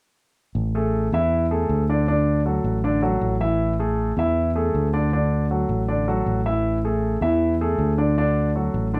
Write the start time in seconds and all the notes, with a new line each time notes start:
0.55 A1
0.75 A3 G#4 A4
1.12 E2 E3 E4 E5
1.51 A3 G#4 A4
1.69 D2
1.89 D3 D4 D5
2.08 D3 D4 D5
2.46 F#3 F#4 A4
2.64 A1
2.84 D3 D4 D5
3.02 F#3 F#4 A4
3.21 A1
3.40 E3 E4 E5
3.79 A3 G#4 A4
4.17 E2 E3 E4 E5
4.55 A3 G#4 A4
4.74 D2
4.93 D3 D4 D5
5.13 D3 D4 D5
5.51 F#3 F#4 A4
5.69 A1
5.88 D3 D4 D5
6.08 F#3 F#4 A4
6.26 A1
6.46 E3 E4 E5
6.84 A3 G#4 A4
7.21 E2 E3 E4 E5
7.61 A3 G#4 A4
7.78 D2
7.98 D3 D4 D5
8.17 D3 D4 D5
8.56 F#3 F#4 A4
8.74 A1
8.94 D3 D4 D5